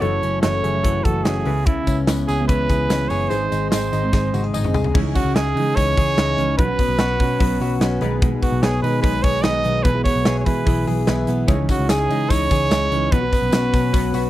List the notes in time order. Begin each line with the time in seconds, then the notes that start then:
0.01 F#1 F#2 C#3 E3 A3 E4 F#4 A4 C#5, closed hi-hat
0.23 F#1 C#4, closed hi-hat
0.42 F#1 C#3 E3 A3 E4 F#4 A4 C#5, snare, closed hi-hat
0.63 F#1 C#4 E4 F#4 G#4, closed hi-hat
0.73 F#2 C#3 E3 A3 E4
0.83 F#1 E3 E4 F#4 A4, kick, closed hi-hat
1.03 F#1 C#3 E3 A3 E4 F#4 A4, kick, closed hi-hat
1.24 F#1 C#4 E4 F#4 G#4 A4, snare, closed hi-hat
1.35 E3 A3 E4
1.45 C#2 C#3 G#3 B3 C#4 E4 B4, open hi-hat
1.66 C#3 E4, kick, closed hi-hat
1.87 C#2 C#4, kick, closed hi-hat, tambourine
2.07 C#2 C#3 G#3 B3 C#4 E4 B4, snare, closed hi-hat, tambourine
2.28 C#2 C#4 E4 G#4 B4, closed hi-hat, tambourine
2.39 C#3 G#3 B3 E4
2.48 C#2 E3 C#4 E4 B4, kick, closed hi-hat, tambourine
2.69 C#2 C#3 G#3 B3 E4 G#4, kick, closed hi-hat, tambourine
2.89 C#2 C#4 E4 B4, snare, closed hi-hat, tambourine
3.00 G#3 B3 E4
3.09 F#1 G#4 C#5, open hi-hat, tambourine
3.29 G#1 G#2 D#3 G#3 C4 D#4 G#4 C5, closed hi-hat, tambourine
3.34 D#4
3.52 G#1 D#4, closed hi-hat, tambourine
3.71 G#1 D#3 G#3 C4 D#4 G#4 C5, snare, closed hi-hat, tambourine
3.75 D#4
3.93 G#1 D#4 G#4 C5, closed hi-hat, tambourine
4.03 G#2 D#3 G#3 C4 D#4
4.13 G#1 G#3 D#4 G#4 D#5, kick, snare, tambourine
4.33 G#1 D#3 G#3 C4 D#4 F#4, high tom, tambourine
4.44 G#4
4.54 G#1 D#4 G#4 D#5, mid tom, tambourine
4.64 G#3 C4 D#4, mid tom
4.74 C2 G#4, floor tom, tambourine
4.84 floor tom
4.94 C#2 C#3 E3 G#3 C#4 D#4 E4 G#4, kick, crash
5.04 E3 G#3 D#4
5.14 C#4 F#4, kick, hi-hat pedal, open hi-hat
5.25 C#2
5.35 C#2 C#4 D#4 E4 G#4, snare, hi-hat pedal, open hi-hat
5.55 C#3 E3 G#3 D#4, hi-hat pedal, open hi-hat
5.76 C#2 E3 C#4 D#4 E4 G#4 C#5, kick, hi-hat pedal, open hi-hat
5.96 C#2 C#3 E3 G#3 D#4 G#4, kick, hi-hat pedal, open hi-hat
6.16 C#2 C#3 E3 G#3 C#4 D#4 E4 G#4, snare, hi-hat pedal, open hi-hat
6.37 C#2 C#3 E3 G#3 C#4 D#4, hi-hat pedal, open hi-hat
6.57 B1 B2 F#3 B3 C#4 F#4 B4, kick, hi-hat pedal, open hi-hat
6.68 B3 C#4 F#4
6.79 B3, kick, hi-hat pedal, open hi-hat
6.88 B1
6.99 B1 B3 C#4 F#4 B4, snare, hi-hat pedal, open hi-hat
7.19 B2 F#3 B3 C#4 F#4, kick, hi-hat pedal, open hi-hat
7.39 B1 F#3 B3 C#4 F#4 B4, kick, hi-hat pedal, open hi-hat
7.60 B1 F#3 B3 C#4 F#4, hi-hat pedal, open hi-hat
7.80 B1 F#3 B3 C#4 F#4 B4, snare, hi-hat pedal, open hi-hat
8.01 B1 B2 D#3 G#3 B3 D#4 G#4 B4, hi-hat pedal, open hi-hat
8.22 B2 D#3 G#3 D#4 G#4, kick, hi-hat pedal, open hi-hat
8.31 G#3 D#4 G#4
8.42 B3 F#4, kick, hi-hat pedal, open hi-hat
8.52 B1
8.62 B1 B3 D#4 G#4 C#5, snare, hi-hat pedal, open hi-hat
8.82 B2 D#3 G#3 D#4 G#4 B4, hi-hat pedal, open hi-hat
9.02 B1 G#3 B3 D#4 G#4 B4, kick, hi-hat pedal, open hi-hat
9.22 B1 D#3 G#3 D#4 G#4 C#5, kick, hi-hat pedal, open hi-hat
9.42 B1 D#3 G#3 B3 D#4 G#4 B4 D#5, snare, hi-hat pedal, open hi-hat
9.63 B1 D#3 G#3 B3 D#4 G#4, hi-hat pedal, open hi-hat
9.83 B1 B2 E3 B3 E4 G#4 B4, kick, hi-hat pedal, open hi-hat
9.93 B3 E4 G#4
10.04 B3 C#5, kick, hi-hat pedal, open hi-hat
10.16 B1
10.25 B1 B3 E4 G#4 B4, snare, hi-hat pedal, open hi-hat
10.39 C#5
10.44 B2 E3 B3 E4 G#4 B4, kick, hi-hat pedal, open hi-hat
10.66 B1 E3 B3 E4 G#4 B4, kick, hi-hat pedal, open hi-hat
10.86 B1 E3 B3 E4 G#4, hi-hat pedal, open hi-hat
11.06 B1 E3 B3 E4 G#4 B4, snare, hi-hat pedal, open hi-hat
11.26 B1 E3 B3 E4 G#4, hi-hat pedal, open hi-hat
11.46 C#2 C#3 E3 G#3 D#4 E4 G#4 C#5, kick, hi-hat pedal, open hi-hat, tambourine
11.57 E3 G#3 D#4
11.69 C#4 F#4, kick, hi-hat pedal, open hi-hat, tambourine
11.79 C#2
11.89 C#2 D#4 E4 G#4 C#5, snare, hi-hat pedal, open hi-hat, tambourine
12.08 C#3 E3 G#3 D#4, hi-hat pedal, open hi-hat, tambourine
12.30 C#2 E3 D#4 E4 G#4 C#5, kick, hi-hat pedal, open hi-hat, tambourine
12.49 C#2 C#3 E3 G#3 D#4 G#4, kick, hi-hat pedal, open hi-hat, tambourine
12.70 C#2 C#3 E3 G#3 D#4 E4 G#4 C#5, snare, hi-hat pedal, open hi-hat, tambourine
12.91 C#2 C#3 E3 G#3 C#4 D#4, hi-hat pedal, open hi-hat
13.12 B1 B2 F#3 B3 C#4 F#4 B4, kick, hi-hat pedal, open hi-hat
13.22 B3 C#4 F#4
13.33 B3, kick, hi-hat pedal, open hi-hat, tambourine
13.42 B1
13.52 B1 B3 C#4 F#4 B4, snare, hi-hat pedal, open hi-hat, tambourine
13.72 B2 F#3 B3 C#4 F#4, kick, hi-hat pedal, open hi-hat, tambourine
13.93 B1 F#3 B3 C#4 F#4 B4, kick, hi-hat pedal, open hi-hat, tambourine
14.13 B1 F#3 B3 C#4 F#4 B5, hi-hat pedal, open hi-hat, tambourine